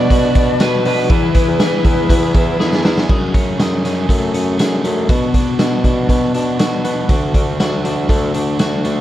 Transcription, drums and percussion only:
0.10 kick medium
0.10 closed hi-hat medium
0.35 kick loud
0.35 closed hi-hat medium
0.60 snare loud
0.60 closed hi-hat loud
0.85 open hi-hat medium
1.10 kick loud
1.10 closed hi-hat medium
1.35 kick medium
1.35 closed hi-hat medium
1.60 snare loud
1.60 closed hi-hat loud
1.85 kick medium
1.85 closed hi-hat medium
2.09 kick medium
2.09 closed hi-hat medium
2.34 kick medium
2.34 closed hi-hat medium
2.60 snare medium
2.73 snare medium
2.85 snare loud
2.97 snare loud
3.09 kick loud
3.09 crash medium
3.34 kick medium
3.34 closed hi-hat medium
3.60 snare loud
3.60 closed hi-hat medium
3.85 snare soft
3.85 closed hi-hat medium
4.09 kick medium
4.09 closed hi-hat medium
4.34 closed hi-hat medium
4.59 snare medium
4.59 closed hi-hat loud
4.85 closed hi-hat medium
5.09 kick loud
5.09 closed hi-hat medium
5.34 kick medium
5.34 closed hi-hat medium
5.59 snare loud
5.59 closed hi-hat medium
5.84 kick medium
5.84 closed hi-hat medium
6.09 kick medium
6.09 closed hi-hat medium
6.34 closed hi-hat medium
6.59 snare loud
6.59 closed hi-hat loud
6.85 closed hi-hat medium
7.09 kick loud
7.09 closed hi-hat medium
7.34 kick medium
7.34 closed hi-hat medium
7.60 snare loud
7.60 closed hi-hat medium
7.85 closed hi-hat medium
8.09 kick medium
8.09 closed hi-hat medium
8.34 closed hi-hat medium
8.59 snare loud
8.59 closed hi-hat loud
8.85 closed hi-hat medium

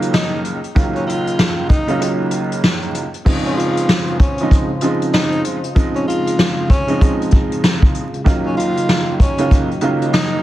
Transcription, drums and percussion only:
0.02 closed hi-hat medium
0.14 snare loud
0.45 closed hi-hat medium
0.64 closed hi-hat soft
0.76 kick loud
0.76 closed hi-hat medium
0.96 closed hi-hat soft
1.09 closed hi-hat medium
1.27 closed hi-hat medium
1.39 snare loud
1.70 kick medium
1.70 closed hi-hat medium
1.88 closed hi-hat medium
2.02 closed hi-hat medium
2.31 closed hi-hat medium
2.52 closed hi-hat medium
2.64 snare loud
2.82 closed hi-hat soft
2.94 closed hi-hat medium
3.14 closed hi-hat soft
3.26 kick loud
3.26 crash medium
3.46 closed hi-hat soft
3.59 closed hi-hat medium
3.77 closed hi-hat medium
3.89 snare loud
4.07 closed hi-hat soft
4.20 kick medium
4.20 closed hi-hat medium
4.38 closed hi-hat medium
4.51 kick medium
4.51 closed hi-hat loud
4.81 closed hi-hat medium
5.02 closed hi-hat medium
5.14 snare loud
5.32 closed hi-hat soft
5.44 closed hi-hat medium
5.64 closed hi-hat soft
5.76 kick loud
5.76 closed hi-hat medium
5.96 closed hi-hat soft
6.09 closed hi-hat medium
6.27 closed hi-hat medium
6.39 snare loud
6.70 kick loud
6.70 closed hi-hat medium
6.88 closed hi-hat medium
7.01 kick medium
7.01 closed hi-hat medium
7.21 closed hi-hat soft
7.31 kick medium
7.31 closed hi-hat medium
7.52 closed hi-hat medium
7.64 snare loud
7.82 kick loud
7.95 closed hi-hat medium
8.14 closed hi-hat soft
8.26 kick loud
8.26 closed hi-hat medium
8.59 closed hi-hat medium
8.77 closed hi-hat medium
8.89 snare loud
9.20 kick medium
9.20 closed hi-hat medium
9.38 closed hi-hat medium
9.51 kick medium
9.51 closed hi-hat medium
9.71 closed hi-hat soft
9.81 closed hi-hat medium
10.02 closed hi-hat medium
10.14 snare loud

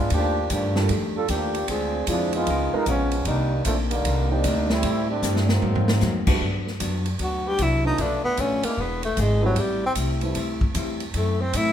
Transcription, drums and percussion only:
0.10 kick soft
0.10 ride medium
0.50 kick soft
0.50 hi-hat pedal medium
0.50 ride medium
0.76 snare medium
0.89 kick soft
0.89 ride medium
1.28 kick soft
1.28 hi-hat pedal medium
1.28 ride medium
1.55 ride soft
1.68 kick soft
1.68 ride medium
2.07 kick soft
2.07 hi-hat pedal medium
2.07 ride medium
2.33 ride soft
2.47 kick soft
2.47 ride medium
2.86 kick soft
2.86 hi-hat pedal medium
2.86 ride medium
3.11 ride soft
3.25 kick soft
3.25 ride medium
3.65 kick soft
3.65 hi-hat pedal medium
3.65 ride medium
3.91 ride medium
4.05 kick soft
4.05 ride medium
4.44 kick soft
4.44 hi-hat pedal medium
4.44 ride medium
4.70 snare medium
4.83 kick soft
4.83 ride medium
5.23 snare soft
5.23 hi-hat pedal medium
5.36 snare medium
5.49 snare medium
5.62 floor tom medium
5.76 floor tom medium
5.88 snare medium
6.01 snare soft
6.01 hi-hat pedal medium
6.27 kick medium
6.27 crash medium
6.41 kick soft
6.67 snare soft
6.80 kick soft
6.80 hi-hat pedal soft
6.80 ride medium
7.06 ride soft
7.19 kick soft
7.19 ride medium
7.58 kick soft
7.58 hi-hat pedal soft
7.58 ride medium
7.98 kick soft
7.98 ride medium
8.37 kick soft
8.37 hi-hat pedal medium
8.37 ride medium
8.63 ride medium
8.78 kick soft
9.03 ride soft
9.17 kick soft
9.17 hi-hat pedal medium
9.17 ride medium
9.56 kick soft
9.56 ride medium
9.95 kick soft
9.95 hi-hat pedal medium
9.95 ride medium
10.21 ride soft
10.35 kick soft
10.35 ride medium
10.61 kick medium
10.75 kick soft
10.75 hi-hat pedal medium
10.75 ride medium
11.00 ride soft
11.14 kick soft
11.14 ride medium
11.53 kick soft
11.53 hi-hat pedal medium
11.53 ride medium

